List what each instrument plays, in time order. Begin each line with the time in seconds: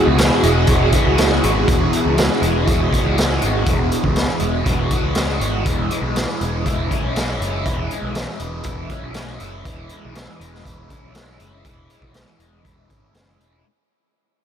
Already playing: distorted electric guitar E2 B2 G#3 B3 F#4, string machine E4 F#4 G#4
0.07 picked electric bass C#2
0.17 distorted electric guitar E3, snare, closed hi-hat
0.41 picked electric bass E1, distorted electric guitar G#3, closed hi-hat
0.67 picked electric bass E1, distorted electric guitar F#4, kick, closed hi-hat
0.92 distorted electric guitar B3, kick, closed hi-hat
1.07 picked electric bass C#2
1.16 distorted electric guitar G#3, snare, closed hi-hat
1.40 picked electric bass G#1, distorted electric guitar F#4, closed hi-hat
1.65 picked electric bass E1, distorted electric guitar E2, kick, closed hi-hat
1.91 distorted electric guitar B2, closed hi-hat
2.06 picked electric bass C#2
2.15 distorted electric guitar E3, closed hi-hat
2.19 snare
2.40 picked electric bass E1, distorted electric guitar G#3, closed hi-hat
2.66 picked electric bass E1, distorted electric guitar F#4, kick, closed hi-hat
2.91 distorted electric guitar B3, kick, closed hi-hat
3.05 picked electric bass C#2
3.15 distorted electric guitar G#3, snare, closed hi-hat
3.40 picked electric bass G#1, distorted electric guitar F#4, closed hi-hat
3.63 picked electric bass E1, distorted electric guitar E2, kick, closed hi-hat
3.88 distorted electric guitar B2, closed hi-hat
4.04 picked electric bass C#2, kick
4.16 distorted electric guitar E3, snare, closed hi-hat
4.39 picked electric bass E1, distorted electric guitar G#3, closed hi-hat
4.65 picked electric bass E1, distorted electric guitar F#4, kick, closed hi-hat
4.89 distorted electric guitar B3, kick, closed hi-hat
5.03 picked electric bass C#2
5.14 distorted electric guitar G#3, snare, closed hi-hat
5.40 picked electric bass G#1, distorted electric guitar F#4, closed hi-hat
5.64 picked electric bass E1, distorted electric guitar E3, kick, closed hi-hat
5.90 distorted electric guitar G#3, closed hi-hat
6.02 picked electric bass B1
6.16 distorted electric guitar E3, snare, closed hi-hat
6.41 picked electric bass E1, distorted electric guitar G#3, closed hi-hat
6.66 picked electric bass E1, distorted electric guitar E4, kick, closed hi-hat
6.90 distorted electric guitar C#4, kick, closed hi-hat
7.03 picked electric bass B1
7.15 distorted electric guitar G#3, snare, closed hi-hat
7.40 picked electric bass F#1, distorted electric guitar E4, closed hi-hat
7.64 picked electric bass E1, distorted electric guitar E3, kick, closed hi-hat
7.90 distorted electric guitar G#3, closed hi-hat
8.03 picked electric bass B1
8.15 distorted electric guitar E3, snare, closed hi-hat
8.39 picked electric bass E1, distorted electric guitar G#3, closed hi-hat
8.63 picked electric bass E1, distorted electric guitar E4, kick, closed hi-hat
8.90 distorted electric guitar C#4, kick, closed hi-hat
9.03 picked electric bass B1
9.14 distorted electric guitar G#3, snare, closed hi-hat
9.40 picked electric bass F#1, distorted electric guitar E4, closed hi-hat
9.65 picked electric bass E1, distorted electric guitar E3, kick, closed hi-hat
9.89 distorted electric guitar G#3, closed hi-hat
10.05 picked electric bass B1
10.15 distorted electric guitar E3, snare, closed hi-hat
10.39 picked electric bass E1, distorted electric guitar G#3, closed hi-hat
10.55 snare
10.63 picked electric bass E1, distorted electric guitar E4, kick, closed hi-hat
10.88 distorted electric guitar C#4, kick, closed hi-hat
11.03 picked electric bass B1
11.13 distorted electric guitar G#3, snare, closed hi-hat
11.39 picked electric bass F#1, distorted electric guitar E4, closed hi-hat
11.64 picked electric bass E1, distorted electric guitar E3, kick, closed hi-hat
11.90 distorted electric guitar G#3, closed hi-hat
12.02 picked electric bass B1, kick
12.14 distorted electric guitar E3, snare, closed hi-hat
12.39 picked electric bass E1, distorted electric guitar G#3, closed hi-hat
12.65 picked electric bass E1, distorted electric guitar E4, kick, closed hi-hat
12.90 picked electric bass G#1, distorted electric guitar C#4, kick, closed hi-hat
13.13 picked electric bass F#1, distorted electric guitar G#3, snare, closed hi-hat
13.39 picked electric bass E1, distorted electric guitar E4, closed hi-hat